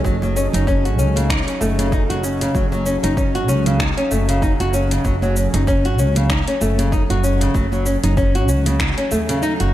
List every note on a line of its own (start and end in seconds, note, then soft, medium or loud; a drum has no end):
0.00 9.74 F#3 medium
0.00 9.74 C#4 medium
0.00 9.74 D#4 medium
0.00 9.74 G#4 medium
0.00 9.74 A4 medium
0.00 9.74 D#5 medium
0.04 0.46 F#1 medium
0.04 0.15 F#3 medium
0.04 kick medium
0.04 high conga medium
0.04 cabasa soft
0.22 0.35 F#3 medium
0.22 high bongo medium
0.22 high conga medium
0.22 cabasa soft
0.36 0.46 C#4 medium
0.36 cabasa medium
0.53 0.99 F#1 medium
0.53 0.67 D#4 medium
0.53 closed hi-hat soft
0.53 high bongo medium
0.53 low conga loud
0.53 cabasa soft
0.67 0.83 C#4 loud
0.67 kick loud
0.67 cabasa soft
0.85 0.98 F#4 medium
0.85 closed hi-hat soft
0.85 cabasa soft
0.99 1.40 C#2 medium
0.99 1.15 C#4 medium
0.99 cabasa medium
1.16 1.29 C#3 medium
1.16 closed hi-hat medium
1.16 high conga medium
1.16 low conga medium
1.16 cabasa soft
1.30 1.40 D#4 medium
1.30 finger snap medium
1.30 kick loud
1.30 cabasa soft
1.47 1.60 C#4 medium
1.47 closed hi-hat soft
1.47 cabasa soft
1.61 2.02 F#1 medium
1.61 1.77 A3 medium
1.61 high bongo medium
1.61 cabasa medium
1.79 1.92 C#3 medium
1.79 closed hi-hat medium
1.79 high conga medium
1.79 cabasa soft
1.92 2.02 D#4 medium
1.92 kick loud
1.92 cabasa soft
2.10 2.49 F#1 medium
2.10 2.23 F#4 medium
2.10 closed hi-hat soft
2.10 low conga medium
2.10 cabasa soft
2.23 2.39 C#4 medium
2.23 cabasa medium
2.41 2.54 C#3 medium
2.41 closed hi-hat medium
2.41 high bongo medium
2.41 cabasa soft
2.55 2.96 F#1 medium
2.55 2.65 F#3 medium
2.55 kick medium
2.55 high conga medium
2.55 cabasa soft
2.72 2.85 F#3 medium
2.72 high bongo medium
2.72 high conga medium
2.72 cabasa soft
2.86 2.96 C#4 medium
2.86 cabasa medium
3.03 3.48 F#1 medium
3.03 3.17 D#4 medium
3.03 closed hi-hat soft
3.03 high bongo medium
3.03 low conga medium
3.03 cabasa soft
3.17 3.33 C#4 medium
3.17 kick medium
3.17 cabasa soft
3.35 3.48 F#4 medium
3.35 closed hi-hat soft
3.35 cabasa soft
3.48 3.90 C#2 medium
3.48 3.64 C#4 medium
3.48 cabasa medium
3.66 3.79 C#3 medium
3.66 closed hi-hat medium
3.66 high conga medium
3.66 low conga medium
3.66 cabasa soft
3.80 3.90 D#4 medium
3.80 finger snap medium
3.80 kick loud
3.80 cabasa soft
3.97 4.10 C#4 medium
3.97 closed hi-hat soft
3.97 cabasa soft
4.11 4.52 F#1 medium
4.11 4.27 A3 medium
4.11 cabasa medium
4.29 4.42 C#3 medium
4.29 closed hi-hat medium
4.29 cabasa soft
4.42 4.53 D#4 loud
4.42 kick loud
4.42 cabasa soft
4.60 4.99 F#1 medium
4.60 4.73 F#4 medium
4.60 closed hi-hat soft
4.60 cabasa soft
4.74 4.90 C#4 medium
4.74 cabasa medium
4.91 5.04 C#3 medium
4.91 closed hi-hat medium
4.91 cabasa soft
5.05 5.46 F#1 medium
5.05 5.15 F#3 medium
5.05 kick medium
5.05 high conga medium
5.05 cabasa soft
5.22 5.35 F#3 medium
5.22 high bongo medium
5.22 high conga medium
5.22 cabasa soft
5.36 5.46 C#4 medium
5.36 cabasa medium
5.54 5.99 F#1 loud
5.54 5.67 D#4 medium
5.54 closed hi-hat medium
5.54 high bongo medium
5.54 low conga medium
5.54 cabasa soft
5.67 5.83 C#4 loud
5.67 kick medium
5.67 cabasa soft
5.85 5.98 F#4 medium
5.85 closed hi-hat soft
5.85 cabasa soft
5.99 6.40 C#2 medium
5.99 6.15 C#4 medium
5.99 cabasa medium
6.15 6.29 C#3 medium
6.15 closed hi-hat medium
6.15 high conga medium
6.15 low conga medium
6.15 cabasa soft
6.30 6.40 D#4 medium
6.30 finger snap medium
6.30 kick loud
6.30 cabasa soft
6.47 6.61 C#4 medium
6.47 closed hi-hat soft
6.47 cabasa soft
6.61 7.02 F#1 medium
6.61 6.77 A3 medium
6.61 high bongo medium
6.61 cabasa medium
6.78 6.92 C#3 medium
6.78 closed hi-hat medium
6.78 high conga medium
6.78 cabasa soft
6.92 7.03 D#4 medium
6.92 kick medium
6.92 cabasa soft
7.10 7.49 F#1 medium
7.10 7.23 F#4 medium
7.10 closed hi-hat soft
7.10 low conga medium
7.10 cabasa soft
7.24 7.40 C#4 medium
7.24 cabasa medium
7.41 7.54 C#3 medium
7.41 closed hi-hat medium
7.41 high bongo medium
7.41 cabasa soft
7.54 7.96 F#1 medium
7.54 7.65 F#3 medium
7.54 kick medium
7.54 high conga medium
7.54 cabasa soft
7.72 7.85 F#3 medium
7.72 high bongo medium
7.72 high conga medium
7.72 cabasa soft
7.86 7.96 C#4 medium
7.86 cabasa medium
8.04 8.49 F#1 medium
8.04 8.17 D#4 medium
8.04 closed hi-hat medium
8.04 high bongo medium
8.04 low conga medium
8.04 cabasa soft
8.17 8.33 C#4 loud
8.17 kick medium
8.17 cabasa soft
8.35 8.48 F#4 medium
8.35 closed hi-hat soft
8.35 cabasa soft
8.49 8.90 C#2 medium
8.49 8.65 C#4 medium
8.49 cabasa medium
8.65 8.79 C#3 medium
8.65 closed hi-hat medium
8.65 high conga medium
8.65 low conga medium
8.65 cabasa soft
8.80 8.90 D#4 medium
8.80 finger snap medium
8.80 kick loud
8.80 cabasa soft
8.98 9.11 C#4 medium
8.98 closed hi-hat soft
8.98 cabasa soft
9.11 9.52 D#2 medium
9.11 9.27 A3 medium
9.11 cabasa medium
9.29 9.42 C#3 medium
9.29 closed hi-hat medium
9.29 cabasa soft
9.43 9.53 D#4 medium
9.43 cabasa soft
9.60 9.70 F#1 medium
9.60 9.73 F#4 medium
9.60 closed hi-hat soft
9.60 cabasa soft